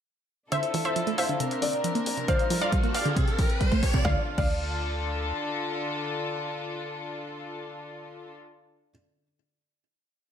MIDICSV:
0, 0, Header, 1, 9, 480
1, 0, Start_track
1, 0, Key_signature, -1, "minor"
1, 0, Tempo, 441176
1, 565, Time_signature, 4, 2, 24, 8
1, 11226, End_track
2, 0, Start_track
2, 0, Title_t, "Grand piano"
2, 0, Program_c, 0, 0
2, 565, Note_on_c, 0, 88, 90
2, 854, Note_off_c, 0, 88, 0
2, 925, Note_on_c, 0, 88, 83
2, 1214, Note_off_c, 0, 88, 0
2, 1283, Note_on_c, 0, 88, 83
2, 1477, Note_off_c, 0, 88, 0
2, 2485, Note_on_c, 0, 89, 96
2, 2774, Note_off_c, 0, 89, 0
2, 2845, Note_on_c, 0, 89, 87
2, 3134, Note_off_c, 0, 89, 0
2, 3204, Note_on_c, 0, 89, 86
2, 3397, Note_off_c, 0, 89, 0
2, 4405, Note_on_c, 0, 89, 93
2, 4538, Note_off_c, 0, 89, 0
2, 4766, Note_on_c, 0, 89, 88
2, 9681, Note_off_c, 0, 89, 0
2, 11226, End_track
3, 0, Start_track
3, 0, Title_t, "Synth pluck"
3, 0, Program_c, 1, 84
3, 565, Note_on_c, 1, 72, 76
3, 565, Note_on_c, 1, 76, 98
3, 854, Note_off_c, 1, 72, 0
3, 854, Note_off_c, 1, 76, 0
3, 925, Note_on_c, 1, 72, 72
3, 925, Note_on_c, 1, 76, 86
3, 1214, Note_off_c, 1, 72, 0
3, 1214, Note_off_c, 1, 76, 0
3, 1286, Note_on_c, 1, 72, 72
3, 1286, Note_on_c, 1, 76, 83
3, 1478, Note_off_c, 1, 72, 0
3, 1478, Note_off_c, 1, 76, 0
3, 2485, Note_on_c, 1, 74, 77
3, 2485, Note_on_c, 1, 77, 97
3, 2774, Note_off_c, 1, 74, 0
3, 2774, Note_off_c, 1, 77, 0
3, 2845, Note_on_c, 1, 74, 72
3, 2845, Note_on_c, 1, 77, 91
3, 3134, Note_off_c, 1, 74, 0
3, 3134, Note_off_c, 1, 77, 0
3, 3205, Note_on_c, 1, 74, 75
3, 3205, Note_on_c, 1, 77, 85
3, 3398, Note_off_c, 1, 74, 0
3, 3398, Note_off_c, 1, 77, 0
3, 4405, Note_on_c, 1, 77, 95
3, 4539, Note_off_c, 1, 77, 0
3, 4765, Note_on_c, 1, 77, 93
3, 9681, Note_off_c, 1, 77, 0
3, 11226, End_track
4, 0, Start_track
4, 0, Title_t, "Felt piano"
4, 0, Program_c, 2, 0
4, 564, Note_on_c, 2, 76, 87
4, 1189, Note_off_c, 2, 76, 0
4, 1285, Note_on_c, 2, 77, 84
4, 1741, Note_off_c, 2, 77, 0
4, 1763, Note_on_c, 2, 74, 90
4, 2388, Note_off_c, 2, 74, 0
4, 2484, Note_on_c, 2, 72, 88
4, 4309, Note_off_c, 2, 72, 0
4, 4405, Note_on_c, 2, 74, 92
4, 4539, Note_off_c, 2, 74, 0
4, 4764, Note_on_c, 2, 74, 93
4, 9680, Note_off_c, 2, 74, 0
4, 11226, End_track
5, 0, Start_track
5, 0, Title_t, "String section"
5, 0, Program_c, 3, 48
5, 564, Note_on_c, 3, 50, 70
5, 564, Note_on_c, 3, 62, 66
5, 564, Note_on_c, 3, 64, 63
5, 564, Note_on_c, 3, 65, 62
5, 564, Note_on_c, 3, 69, 75
5, 1514, Note_off_c, 3, 65, 0
5, 1515, Note_off_c, 3, 50, 0
5, 1515, Note_off_c, 3, 64, 0
5, 1515, Note_off_c, 3, 69, 0
5, 1524, Note_on_c, 3, 60, 70
5, 1524, Note_on_c, 3, 70, 81
5, 2475, Note_off_c, 3, 60, 0
5, 2486, Note_on_c, 3, 55, 74
5, 2486, Note_on_c, 3, 65, 69
5, 2486, Note_on_c, 3, 69, 69
5, 3416, Note_off_c, 3, 62, 0
5, 3425, Note_off_c, 3, 70, 0
5, 3435, Note_off_c, 3, 65, 0
5, 3436, Note_off_c, 3, 55, 0
5, 3446, Note_on_c, 3, 60, 71
5, 3446, Note_on_c, 3, 67, 68
5, 4386, Note_off_c, 3, 69, 0
5, 4396, Note_off_c, 3, 60, 0
5, 4396, Note_off_c, 3, 67, 0
5, 4404, Note_on_c, 3, 50, 81
5, 4404, Note_on_c, 3, 65, 74
5, 4404, Note_on_c, 3, 69, 88
5, 4405, Note_on_c, 3, 62, 71
5, 9071, Note_off_c, 3, 50, 0
5, 9071, Note_off_c, 3, 65, 0
5, 9071, Note_off_c, 3, 69, 0
5, 9072, Note_off_c, 3, 62, 0
5, 11226, End_track
6, 0, Start_track
6, 0, Title_t, "Synth arpeggio sound"
6, 0, Program_c, 4, 84
6, 565, Note_on_c, 4, 50, 99
6, 679, Note_off_c, 4, 50, 0
6, 805, Note_on_c, 4, 52, 75
6, 919, Note_off_c, 4, 52, 0
6, 1044, Note_on_c, 4, 53, 80
6, 1159, Note_off_c, 4, 53, 0
6, 1164, Note_on_c, 4, 57, 96
6, 1243, Note_off_c, 4, 57, 0
6, 1405, Note_on_c, 4, 50, 76
6, 1483, Note_off_c, 4, 50, 0
6, 1524, Note_on_c, 4, 48, 98
6, 1638, Note_off_c, 4, 48, 0
6, 1764, Note_on_c, 4, 50, 72
6, 1878, Note_off_c, 4, 50, 0
6, 2004, Note_on_c, 4, 53, 81
6, 2118, Note_off_c, 4, 53, 0
6, 2124, Note_on_c, 4, 58, 101
6, 2203, Note_off_c, 4, 58, 0
6, 2364, Note_on_c, 4, 48, 75
6, 2443, Note_off_c, 4, 48, 0
6, 2484, Note_on_c, 4, 50, 103
6, 2598, Note_off_c, 4, 50, 0
6, 2724, Note_on_c, 4, 53, 76
6, 2838, Note_off_c, 4, 53, 0
6, 2965, Note_on_c, 4, 55, 85
6, 3079, Note_off_c, 4, 55, 0
6, 3084, Note_on_c, 4, 58, 98
6, 3163, Note_off_c, 4, 58, 0
6, 3324, Note_on_c, 4, 50, 80
6, 3403, Note_off_c, 4, 50, 0
6, 3444, Note_on_c, 4, 48, 102
6, 3558, Note_off_c, 4, 48, 0
6, 3684, Note_on_c, 4, 52, 75
6, 3798, Note_off_c, 4, 52, 0
6, 3924, Note_on_c, 4, 55, 83
6, 4038, Note_off_c, 4, 55, 0
6, 4044, Note_on_c, 4, 57, 102
6, 4123, Note_off_c, 4, 57, 0
6, 4284, Note_on_c, 4, 48, 79
6, 4363, Note_off_c, 4, 48, 0
6, 4404, Note_on_c, 4, 50, 94
6, 4538, Note_off_c, 4, 50, 0
6, 4765, Note_on_c, 4, 50, 95
6, 4899, Note_off_c, 4, 50, 0
6, 11226, End_track
7, 0, Start_track
7, 0, Title_t, "Analog synth bass"
7, 0, Program_c, 5, 38
7, 804, Note_on_c, 5, 38, 96
7, 970, Note_off_c, 5, 38, 0
7, 1284, Note_on_c, 5, 26, 96
7, 1450, Note_off_c, 5, 26, 0
7, 1764, Note_on_c, 5, 34, 93
7, 1929, Note_off_c, 5, 34, 0
7, 2244, Note_on_c, 5, 34, 80
7, 2410, Note_off_c, 5, 34, 0
7, 2725, Note_on_c, 5, 31, 98
7, 2890, Note_off_c, 5, 31, 0
7, 3205, Note_on_c, 5, 43, 100
7, 3370, Note_off_c, 5, 43, 0
7, 3684, Note_on_c, 5, 33, 96
7, 3850, Note_off_c, 5, 33, 0
7, 4164, Note_on_c, 5, 33, 82
7, 4329, Note_off_c, 5, 33, 0
7, 4405, Note_on_c, 5, 38, 95
7, 4539, Note_off_c, 5, 38, 0
7, 4765, Note_on_c, 5, 38, 96
7, 5801, Note_off_c, 5, 38, 0
7, 11226, End_track
8, 0, Start_track
8, 0, Title_t, "Riser"
8, 0, Program_c, 6, 103
8, 565, Note_on_c, 6, 60, 76
8, 4405, Note_off_c, 6, 60, 0
8, 11226, End_track
9, 0, Start_track
9, 0, Title_t, "Drums"
9, 564, Note_on_c, 9, 42, 64
9, 673, Note_off_c, 9, 42, 0
9, 684, Note_on_c, 9, 42, 38
9, 793, Note_off_c, 9, 42, 0
9, 804, Note_on_c, 9, 46, 98
9, 913, Note_off_c, 9, 46, 0
9, 924, Note_on_c, 9, 42, 38
9, 1033, Note_off_c, 9, 42, 0
9, 1044, Note_on_c, 9, 42, 63
9, 1153, Note_off_c, 9, 42, 0
9, 1164, Note_on_c, 9, 42, 38
9, 1273, Note_off_c, 9, 42, 0
9, 1284, Note_on_c, 9, 46, 96
9, 1393, Note_off_c, 9, 46, 0
9, 1404, Note_on_c, 9, 42, 38
9, 1513, Note_off_c, 9, 42, 0
9, 1524, Note_on_c, 9, 42, 68
9, 1633, Note_off_c, 9, 42, 0
9, 1644, Note_on_c, 9, 42, 39
9, 1753, Note_off_c, 9, 42, 0
9, 1764, Note_on_c, 9, 46, 100
9, 1872, Note_off_c, 9, 46, 0
9, 1884, Note_on_c, 9, 42, 39
9, 1993, Note_off_c, 9, 42, 0
9, 2004, Note_on_c, 9, 42, 64
9, 2113, Note_off_c, 9, 42, 0
9, 2124, Note_on_c, 9, 42, 38
9, 2233, Note_off_c, 9, 42, 0
9, 2244, Note_on_c, 9, 46, 100
9, 2353, Note_off_c, 9, 46, 0
9, 2364, Note_on_c, 9, 42, 39
9, 2473, Note_off_c, 9, 42, 0
9, 2484, Note_on_c, 9, 36, 101
9, 2484, Note_on_c, 9, 42, 66
9, 2593, Note_off_c, 9, 36, 0
9, 2593, Note_off_c, 9, 42, 0
9, 2604, Note_on_c, 9, 42, 40
9, 2713, Note_off_c, 9, 42, 0
9, 2724, Note_on_c, 9, 46, 111
9, 2833, Note_off_c, 9, 46, 0
9, 2844, Note_on_c, 9, 42, 39
9, 2953, Note_off_c, 9, 42, 0
9, 2964, Note_on_c, 9, 36, 99
9, 2964, Note_on_c, 9, 42, 66
9, 3073, Note_off_c, 9, 36, 0
9, 3073, Note_off_c, 9, 42, 0
9, 3084, Note_on_c, 9, 42, 38
9, 3193, Note_off_c, 9, 42, 0
9, 3204, Note_on_c, 9, 46, 105
9, 3312, Note_off_c, 9, 46, 0
9, 3324, Note_on_c, 9, 42, 39
9, 3433, Note_off_c, 9, 42, 0
9, 3444, Note_on_c, 9, 36, 102
9, 3444, Note_on_c, 9, 42, 70
9, 3553, Note_off_c, 9, 36, 0
9, 3553, Note_off_c, 9, 42, 0
9, 3564, Note_on_c, 9, 42, 38
9, 3673, Note_off_c, 9, 42, 0
9, 3684, Note_on_c, 9, 36, 109
9, 3684, Note_on_c, 9, 46, 110
9, 3793, Note_off_c, 9, 36, 0
9, 3793, Note_off_c, 9, 46, 0
9, 3804, Note_on_c, 9, 42, 39
9, 3913, Note_off_c, 9, 42, 0
9, 3924, Note_on_c, 9, 36, 100
9, 3924, Note_on_c, 9, 42, 64
9, 4033, Note_off_c, 9, 36, 0
9, 4033, Note_off_c, 9, 42, 0
9, 4044, Note_on_c, 9, 36, 93
9, 4044, Note_on_c, 9, 42, 39
9, 4153, Note_off_c, 9, 36, 0
9, 4153, Note_off_c, 9, 42, 0
9, 4164, Note_on_c, 9, 36, 104
9, 4164, Note_on_c, 9, 46, 105
9, 4273, Note_off_c, 9, 36, 0
9, 4273, Note_off_c, 9, 46, 0
9, 4285, Note_on_c, 9, 36, 94
9, 4393, Note_off_c, 9, 36, 0
9, 4404, Note_on_c, 9, 38, 88
9, 4405, Note_on_c, 9, 36, 113
9, 4513, Note_off_c, 9, 36, 0
9, 4513, Note_off_c, 9, 38, 0
9, 4764, Note_on_c, 9, 49, 84
9, 4765, Note_on_c, 9, 36, 112
9, 4873, Note_off_c, 9, 36, 0
9, 4873, Note_off_c, 9, 49, 0
9, 11226, End_track
0, 0, End_of_file